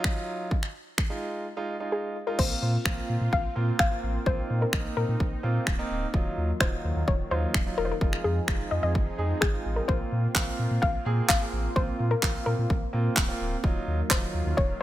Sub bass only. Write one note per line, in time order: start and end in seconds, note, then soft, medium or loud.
2.39 2.54 A#1 loud
2.62 2.77 A#2 loud
2.85 3.01 A#1 loud
3.09 3.17 A#2 loud
3.21 3.29 A#2 loud
3.33 3.48 A#1 loud
3.56 3.71 A#2 loud
3.79 3.95 G#1 medium
4.03 4.18 A1 loud
4.26 4.41 A#1 loud
4.50 4.65 A#2 loud
4.73 4.88 A#1 loud
4.97 5.04 A#2 loud
5.09 5.16 A#2 medium
5.20 5.35 A#1 loud
5.44 5.59 A#2 loud
5.67 5.82 C#1 medium
5.90 6.06 D1 loud
6.14 6.29 D#1 loud
6.37 6.53 D#2 loud
6.61 6.76 D#1 loud
6.84 6.92 D#2 loud
6.96 7.03 D#2 medium
7.08 7.23 D#1 loud
7.31 7.46 D#2 loud
7.54 7.70 D#1 medium
7.78 7.93 E1 medium
8.01 8.16 F1 loud
8.25 8.40 F2 loud
8.48 8.63 F1 loud
8.71 8.79 F2 loud
8.83 8.97 F2 medium
8.95 9.10 F1 loud
9.18 9.34 F2 loud
9.42 9.57 G#1 medium
9.65 9.81 A1 medium
9.89 10.04 A#1 loud
10.12 10.27 A#2 loud
10.35 10.51 A#1 loud
10.59 10.67 A#2 loud
10.71 10.78 A#2 loud
10.82 10.98 A#1 loud
11.06 11.21 A#2 loud
11.29 11.45 G#1 medium
11.53 11.68 A1 loud
11.76 11.91 A#1 loud
12.00 12.15 A#2 loud
12.23 12.38 A#1 loud
12.47 12.54 A#2 loud
12.58 12.66 A#2 medium
12.70 12.85 A#1 loud
12.94 13.09 A#2 loud
13.17 13.32 C#1 medium
13.40 13.56 D1 loud
13.64 13.79 D#1 loud
13.87 14.03 D#2 loud
14.10 14.26 D#1 loud
14.34 14.42 D#2 loud
14.46 14.53 D#2 medium
14.58 14.73 D#1 loud